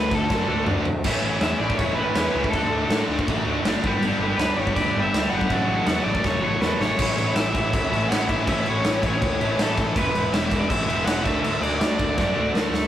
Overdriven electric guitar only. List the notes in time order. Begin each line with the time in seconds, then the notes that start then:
Already playing: B4
0.15 A4
1.43 E5
1.60 D5
1.78 C#5
1.94 B4
2.50 A4
4.38 B4
4.57 C#5
4.76 D5
5.03 E5
5.30 F#5
5.87 F#5
6.04 D5
6.27 C#5
6.45 C#5
6.61 B4
6.81 C#5
7.36 E5
7.74 E5
8.10 F#5
8.29 E5
8.49 E5
8.68 C#5
9.06 C#5
9.62 A4
9.97 B4
10.33 E5
10.60 D5
10.70 E5
11.06 F#5
11.24 E5
11.43 E5
11.63 D5
11.99 D5